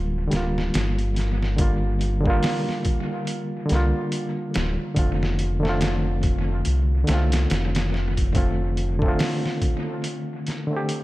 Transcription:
Already playing: analog synth bass D1, reed electric piano D3 G3 A#3 F4
0.27 reed electric piano D3 G3
0.31 analog synth bass D1, reed electric piano A#3, snare, closed hi-hat
0.37 reed electric piano F4
0.58 snare
0.74 analog synth bass G1, snare, closed hi-hat
0.98 closed hi-hat
1.16 snare, closed hi-hat
1.43 snare
1.56 reed electric piano D3 G3 A#3, kick, closed hi-hat
1.61 reed electric piano F4
2.01 closed hi-hat
2.21 reed electric piano D3 G3
2.26 reed electric piano A#3, kick
2.30 reed electric piano F4
2.43 snare, open hi-hat
2.69 snare
2.85 kick, closed hi-hat
3.27 closed hi-hat
3.66 reed electric piano D3 G3, closed hi-hat
3.71 analog synth bass C2, reed electric piano A#3, snare
3.75 reed electric piano F4
4.12 closed hi-hat
4.54 analog synth bass D1, snare, closed hi-hat
4.94 analog synth bass F1, reed electric piano D3 A3 C4, kick, closed hi-hat
4.99 reed electric piano F4
5.23 snare
5.39 closed hi-hat
5.60 reed electric piano D3 A3
5.65 reed electric piano C4, snare
5.69 reed electric piano F4
5.81 snare, closed hi-hat
6.23 kick, closed hi-hat
6.65 analog synth bass C2, closed hi-hat
7.05 reed electric piano D3 A3, closed hi-hat
7.09 analog synth bass C2, reed electric piano C4, snare
7.14 reed electric piano F4
7.32 snare, closed hi-hat
7.50 analog synth bass F1, snare, closed hi-hat
7.75 snare, closed hi-hat
7.94 snare
8.17 kick, closed hi-hat
8.33 reed electric piano D3 A3 C4, kick, closed hi-hat
8.38 reed electric piano F4
8.77 closed hi-hat
8.99 reed electric piano D3 A3, kick
9.05 reed electric piano C4 F4
9.19 snare, open hi-hat
9.46 snare
9.62 kick, closed hi-hat
10.04 closed hi-hat
10.47 snare, closed hi-hat
10.67 reed electric piano D3 A3
10.73 reed electric piano C4 G4
10.89 closed hi-hat

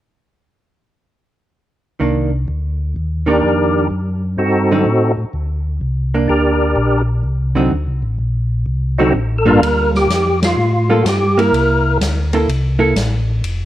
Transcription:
2.00 tonewheel organ C2, hollow-body jazz guitar D#3 A#3 D4
2.48 tonewheel organ D2
2.96 tonewheel organ D#2
3.26 hollow-body jazz guitar D#3 A#3 D4, tonewheel organ D4 G4 A#4
3.43 tonewheel organ F2
3.90 tonewheel organ F#2
4.37 tonewheel organ G2 C4 D#4 F#4 A4
4.71 hollow-body jazz guitar D3 F#3 C4 D#4
4.85 tonewheel organ A2
5.17 tonewheel organ A2
5.33 tonewheel organ D2
5.81 tonewheel organ C2
6.14 hollow-body jazz guitar A#3 D4
6.28 tonewheel organ D2 D4 G4 A#4
6.76 tonewheel organ A#1
7.24 tonewheel organ C2
7.55 hollow-body jazz guitar D3 F#3 C4 D#4
7.72 tonewheel organ D2
7.87 tonewheel organ C2
8.03 tonewheel organ A1
8.19 tonewheel organ A#1
8.66 tonewheel organ C2
8.98 hollow-body jazz guitar D3 F#3 C4 D#4, tonewheel organ C4 D#4 F#4 A4
9.13 tonewheel organ A1
9.39 tonewheel organ A4
9.46 tonewheel organ G2 A#3 D4 F4 A4 A#4, hollow-body jazz guitar G3 A#3 F4
9.61 tonewheel organ D2, ride
9.95 tonewheel organ G4, snare
10.09 tonewheel organ F2, snare, hi-hat pedal, ride
10.43 tonewheel organ F4, snare, ride
10.57 tonewheel organ A2
10.90 hollow-body jazz guitar G3 A#3 F4 A4
11.02 tonewheel organ G2 F#4, snare, hi-hat pedal, ride
11.09 tonewheel organ G4
11.38 hollow-body jazz guitar A#3 E4, tonewheel organ A#4, ride
11.52 tonewheel organ C2, ride
12.00 tonewheel organ D2, snare, hi-hat pedal, ride
12.33 hollow-body jazz guitar A#3 E4 A4, ride
12.47 tonewheel organ C2, ride
12.79 hollow-body jazz guitar A#3 E4 A4
12.95 tonewheel organ A1, snare, hi-hat pedal, ride
13.42 tonewheel organ F1, ride

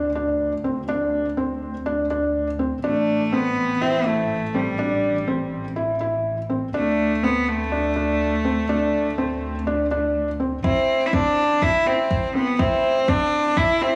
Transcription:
Already playing: double bass section D2
0.15 felt piano D4
0.64 felt piano C4
0.89 felt piano D4
1.37 felt piano C4
1.86 felt piano D4
2.10 felt piano D4
2.59 felt piano C4
2.84 double bass section A1, cello A3, felt piano D4
3.32 cello B3, felt piano C4
3.81 cello C4, felt piano E4
4.06 cello A3, felt piano E4
4.54 cello G3, felt piano C4
4.79 felt piano D4
5.28 felt piano C4
5.76 felt piano E4
6.01 felt piano E4
6.50 felt piano C4
6.74 double bass section D2, cello A3, felt piano D4
7.23 cello B3, felt piano C4
7.48 cello A3
7.72 felt piano D4
7.96 felt piano D4
8.45 felt piano C4
8.69 felt piano D4
9.18 felt piano C4
9.67 felt piano D4
9.91 felt piano D4
10.40 felt piano C4
10.64 double bass section A1, cello C4, felt piano E4, kick, mid tom
11.01 mid tom
11.06 cello E4
11.13 felt piano C4, cello D4, kick
11.37 mid tom
11.62 felt piano E4, cello E4, kick
11.74 mid tom
11.86 cello C4, felt piano E4
12.11 kick, mid tom
12.35 cello B3, felt piano C4
12.47 mid tom
12.59 cello C4, felt piano E4, kick
12.84 mid tom
13.08 felt piano C4, cello D4, kick
13.20 mid tom
13.57 cello E4, felt piano E4, kick
13.81 cello C4, felt piano E4

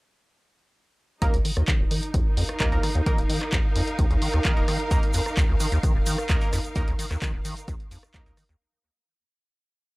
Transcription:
1.21 acid bass D#2, synth stab A#3 D#4 A#4, string section D#4, kick, closed hi-hat
1.34 acid bass C#2, closed hi-hat
1.45 acid bass D#3, open hi-hat
1.57 acid bass D#2, cross-stick
1.68 acid bass D#3, kick, clap, closed hi-hat
1.80 acid bass D#1, string section A#4
1.91 acid bass D#3, open hi-hat
2.03 closed hi-hat
2.14 acid bass D#2, kick, closed hi-hat
2.33 acid bass F2, string section F5, open hi-hat
2.49 cross-stick, closed hi-hat
2.60 acid bass D#2, synth stab A#3 D#4 A#4, kick, clap, closed hi-hat
2.72 acid bass C#2, synth stab A#3 D#4 A#4, closed hi-hat
2.83 acid bass D#3, cross-stick, open hi-hat
2.95 acid bass D#2, closed hi-hat
3.06 acid bass D#3, synth stab A#3 D#4 A#4, kick, closed hi-hat
3.18 acid bass D#1, closed hi-hat
3.29 acid bass D#3, open hi-hat
3.41 cross-stick, clap, closed hi-hat
3.52 acid bass D#2, kick, clap, closed hi-hat
3.76 acid bass F2, open hi-hat
3.87 closed hi-hat
3.99 acid bass D#2, kick, closed hi-hat
4.11 acid bass C#2, closed hi-hat
4.22 acid bass D#3, open hi-hat
4.34 acid bass D#2, cross-stick, closed hi-hat
4.45 acid bass D#3, synth stab A#3 D#4 A#4, kick, clap, closed hi-hat
4.57 acid bass D#1, synth stab A#3 D#4 A#4, closed hi-hat
4.68 acid bass D#3, cross-stick, open hi-hat
4.80 closed hi-hat
4.91 acid bass D#2, synth stab A#3 D#4 A#4, kick, closed hi-hat, shaker
5.03 closed hi-hat
5.13 acid bass F2, open hi-hat, shaker
5.26 cross-stick, shaker
5.37 acid bass D#2, kick, clap, closed hi-hat, shaker
5.49 acid bass C#2
5.60 acid bass D#3, open hi-hat, shaker
5.72 acid bass D#2, closed hi-hat, shaker
5.83 acid bass D#3, kick, closed hi-hat, shaker
5.95 acid bass D#1
6.06 acid bass D#3, open hi-hat, shaker
6.18 cross-stick, closed hi-hat, shaker
6.29 acid bass D#2, synth stab A#3 D#4 A#4, kick, clap, closed hi-hat, shaker
6.41 synth stab A#3 D#4 A#4, closed hi-hat, shaker
6.53 acid bass F2, cross-stick, open hi-hat, shaker
6.64 closed hi-hat, shaker
6.75 acid bass D#2, synth stab A#3 D#4 A#4, kick, closed hi-hat, shaker
6.87 acid bass C#2, closed hi-hat
6.99 acid bass D#3, open hi-hat, shaker
7.10 acid bass D#2, cross-stick, clap, closed hi-hat, shaker
7.22 acid bass D#3, kick, clap, closed hi-hat, shaker
7.34 acid bass D#1
7.45 acid bass D#3, open hi-hat, shaker
7.57 closed hi-hat, shaker
7.68 acid bass D#2, kick, closed hi-hat, shaker
7.80 closed hi-hat
7.91 acid bass F2, open hi-hat, shaker
8.03 cross-stick, closed hi-hat, shaker
8.14 acid bass D#2, synth stab A#3 D#4 A#4, kick, clap, closed hi-hat, shaker
8.26 acid bass C#2, synth stab A#3 D#4 A#4, closed hi-hat, shaker
8.37 acid bass D#3, cross-stick, open hi-hat, shaker
8.49 acid bass D#2, closed hi-hat, shaker

